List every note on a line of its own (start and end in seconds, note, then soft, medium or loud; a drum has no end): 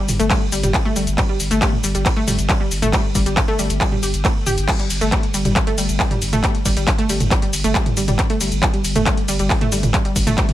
0.08 0.19 G1 loud
0.08 mid tom medium
0.08 open hi-hat medium
0.08 shaker medium
0.20 0.30 G1 medium
0.20 0.26 A3 loud
0.20 closed hi-hat medium
0.20 shaker soft
0.30 0.34 G3 medium
0.30 kick loud
0.30 clap loud
0.30 closed hi-hat medium
0.30 ride medium
0.30 shaker soft
0.52 0.63 G1 loud
0.52 0.56 G3 medium
0.52 open hi-hat loud
0.52 shaker medium
0.63 0.74 G1 medium
0.63 0.73 G3 medium
0.63 closed hi-hat medium
0.63 mid tom medium
0.63 shaker soft
0.74 kick loud
0.74 clap loud
0.74 closed hi-hat medium
0.74 ride medium
0.74 shaker soft
0.85 0.92 A3 loud
0.96 1.07 G1 loud
0.96 1.00 G3 medium
0.96 open hi-hat medium
0.96 shaker medium
1.07 1.18 G1 medium
1.07 closed hi-hat medium
1.07 shaker soft
1.18 1.22 G3 medium
1.18 kick loud
1.18 clap loud
1.18 closed hi-hat medium
1.18 mid tom medium
1.18 ride medium
1.18 shaker soft
1.29 1.39 G3 medium
1.40 1.50 G1 loud
1.40 open hi-hat loud
1.40 shaker medium
1.51 1.62 G1 medium
1.51 1.58 A3 loud
1.51 closed hi-hat medium
1.51 shaker soft
1.62 1.66 G3 medium
1.62 kick loud
1.62 clap loud
1.62 closed hi-hat medium
1.62 ride medium
1.62 shaker soft
1.73 mid tom medium
1.84 1.94 G1 loud
1.84 1.88 G3 medium
1.84 open hi-hat medium
1.84 shaker medium
1.95 2.05 G1 medium
1.95 2.05 G3 medium
1.95 closed hi-hat medium
1.95 shaker soft
2.06 kick loud
2.06 clap loud
2.06 closed hi-hat medium
2.06 ride medium
2.06 shaker soft
2.16 2.23 A3 loud
2.27 2.38 G1 loud
2.27 2.31 G3 medium
2.27 mid tom medium
2.27 open hi-hat loud
2.27 shaker medium
2.38 2.49 G1 medium
2.38 closed hi-hat medium
2.38 shaker soft
2.49 2.53 G3 medium
2.49 kick loud
2.49 clap loud
2.49 closed hi-hat medium
2.49 ride medium
2.49 shaker soft
2.60 2.70 G3 medium
2.71 2.82 G1 loud
2.71 open hi-hat medium
2.71 shaker medium
2.82 2.93 G1 medium
2.82 2.89 A3 loud
2.82 closed hi-hat medium
2.82 mid tom medium
2.82 shaker soft
2.93 2.97 G3 medium
2.93 kick loud
2.93 clap loud
2.93 closed hi-hat medium
2.93 ride medium
2.93 shaker soft
3.15 3.25 G1 medium
3.15 3.19 G3 medium
3.15 kick medium
3.15 open hi-hat loud
3.15 shaker medium
3.26 3.37 G1 medium
3.26 3.36 G3 medium
3.26 closed hi-hat medium
3.26 shaker soft
3.37 kick loud
3.37 clap loud
3.37 closed hi-hat medium
3.37 mid tom medium
3.37 ride medium
3.37 shaker soft
3.48 3.55 A3 loud
3.59 3.69 G1 loud
3.59 3.63 G3 medium
3.59 open hi-hat medium
3.59 shaker medium
3.70 3.80 G1 medium
3.70 closed hi-hat medium
3.70 shaker soft
3.81 3.85 G3 medium
3.81 kick loud
3.81 clap loud
3.81 closed hi-hat medium
3.81 ride medium
3.81 shaker soft
3.92 4.02 G3 medium
3.92 mid tom medium
4.03 4.13 G1 loud
4.03 4.13 G4 medium
4.03 open hi-hat loud
4.03 shaker medium
4.14 4.24 G1 medium
4.14 closed hi-hat medium
4.14 shaker soft
4.25 4.29 A3 medium
4.25 kick loud
4.25 clap loud
4.25 closed hi-hat medium
4.25 ride medium
4.25 shaker soft
4.46 4.57 G1 loud
4.46 4.53 G4 loud
4.46 mid tom medium
4.46 open hi-hat medium
4.46 shaker medium
4.57 4.68 G1 medium
4.57 closed hi-hat medium
4.57 shaker soft
4.68 4.72 G3 medium
4.68 kick loud
4.68 clap loud
4.68 closed hi-hat medium
4.68 crash loud
4.68 shaker soft
4.79 4.89 G3 medium
4.79 closed hi-hat medium
4.90 5.01 G1 loud
4.90 open hi-hat loud
4.90 ride medium
4.90 shaker medium
5.01 5.12 G1 medium
5.01 5.08 A3 loud
5.01 closed hi-hat medium
5.01 shaker soft
5.12 5.16 G3 medium
5.12 kick loud
5.12 clap loud
5.12 closed hi-hat loud
5.12 shaker soft
5.23 closed hi-hat medium
5.34 5.44 G1 loud
5.34 5.38 G3 medium
5.34 open hi-hat loud
5.34 ride medium
5.34 shaker medium
5.45 5.56 G1 medium
5.45 5.55 G3 medium
5.45 closed hi-hat medium
5.45 mid tom medium
5.45 shaker soft
5.56 kick loud
5.56 clap loud
5.56 closed hi-hat loud
5.56 shaker soft
5.67 5.74 A3 loud
5.67 closed hi-hat medium
5.78 5.88 G1 loud
5.78 5.82 G3 medium
5.78 open hi-hat loud
5.78 ride medium
5.78 shaker medium
5.89 6.00 G1 medium
5.89 closed hi-hat medium
5.89 shaker soft
6.00 6.04 G3 medium
6.00 kick loud
6.00 clap loud
6.00 open hi-hat medium
6.00 shaker soft
6.11 6.21 G3 medium
6.11 closed hi-hat medium
6.11 mid tom medium
6.22 6.32 G1 loud
6.22 open hi-hat loud
6.22 ride medium
6.22 shaker medium
6.33 6.43 G1 medium
6.33 6.39 A3 loud
6.33 closed hi-hat medium
6.33 mid tom medium
6.33 shaker soft
6.43 6.48 G3 medium
6.43 kick loud
6.43 clap loud
6.43 closed hi-hat loud
6.43 shaker soft
6.55 closed hi-hat medium
6.65 6.76 G1 loud
6.65 6.70 G3 medium
6.65 kick medium
6.65 open hi-hat loud
6.65 ride medium
6.65 shaker medium
6.77 6.87 G1 medium
6.77 6.86 G3 medium
6.77 closed hi-hat medium
6.77 shaker soft
6.87 kick loud
6.87 clap loud
6.87 closed hi-hat loud
6.87 shaker soft
6.98 7.05 A3 loud
6.98 closed hi-hat medium
7.09 7.20 G1 loud
7.09 7.13 G3 medium
7.09 open hi-hat loud
7.09 ride medium
7.09 shaker medium
7.20 7.31 G1 medium
7.20 closed hi-hat medium
7.20 mid tom medium
7.20 shaker soft
7.31 7.35 G3 medium
7.31 kick loud
7.31 clap loud
7.31 closed hi-hat loud
7.31 shaker soft
7.42 7.52 G3 medium
7.42 closed hi-hat medium
7.53 7.64 G1 loud
7.53 open hi-hat loud
7.53 ride medium
7.53 shaker medium
7.64 7.75 G1 medium
7.64 7.71 A3 loud
7.64 closed hi-hat medium
7.64 shaker soft
7.75 7.79 G3 medium
7.75 kick loud
7.75 clap loud
7.75 closed hi-hat loud
7.75 shaker soft
7.86 closed hi-hat medium
7.86 mid tom medium
7.97 8.07 G1 loud
7.97 8.01 G3 medium
7.97 open hi-hat loud
7.97 ride medium
7.97 shaker medium
8.08 8.19 G1 medium
8.08 8.18 G3 medium
8.08 closed hi-hat medium
8.08 mid tom medium
8.08 shaker soft
8.19 kick loud
8.19 clap loud
8.19 closed hi-hat loud
8.19 shaker soft
8.30 8.36 A3 loud
8.30 closed hi-hat medium
8.41 8.51 G1 loud
8.41 8.45 G3 medium
8.41 open hi-hat loud
8.41 ride medium
8.41 shaker medium
8.52 8.62 G1 medium
8.52 closed hi-hat medium
8.52 shaker soft
8.63 8.67 G3 medium
8.63 kick loud
8.63 clap loud
8.63 closed hi-hat medium
8.63 shaker soft
8.74 8.84 G3 medium
8.74 closed hi-hat medium
8.84 8.95 G1 loud
8.84 open hi-hat loud
8.84 ride medium
8.84 shaker medium
8.95 9.06 G1 medium
8.95 9.02 A3 loud
8.95 closed hi-hat medium
8.95 mid tom medium
8.95 shaker soft
9.06 9.10 G3 medium
9.06 kick loud
9.06 clap loud
9.06 closed hi-hat loud
9.06 shaker soft
9.17 closed hi-hat medium
9.28 9.39 G1 loud
9.28 9.32 G3 medium
9.28 open hi-hat loud
9.28 ride medium
9.28 shaker medium
9.39 9.50 G1 medium
9.39 9.49 G3 medium
9.39 closed hi-hat medium
9.39 shaker soft
9.50 kick loud
9.50 clap loud
9.50 open hi-hat medium
9.50 shaker soft
9.61 9.68 A3 loud
9.61 closed hi-hat medium
9.61 mid tom medium
9.72 9.82 G1 loud
9.72 9.76 G3 medium
9.72 open hi-hat loud
9.72 ride medium
9.72 shaker medium
9.83 9.94 G1 medium
9.83 closed hi-hat medium
9.83 mid tom loud
9.83 shaker soft
9.94 9.98 G3 medium
9.94 kick loud
9.94 clap loud
9.94 closed hi-hat medium
9.94 shaker soft
10.05 10.15 G3 medium
10.05 closed hi-hat medium
10.16 10.26 G1 loud
10.16 kick medium
10.16 open hi-hat loud
10.16 ride medium
10.16 shaker medium
10.27 10.37 G1 medium
10.27 10.33 A3 loud
10.27 closed hi-hat medium
10.27 mid tom medium
10.27 shaker soft
10.38 10.42 G3 medium
10.38 kick loud
10.38 clap loud
10.38 closed hi-hat medium
10.38 shaker soft
10.49 closed hi-hat medium
10.49 mid tom medium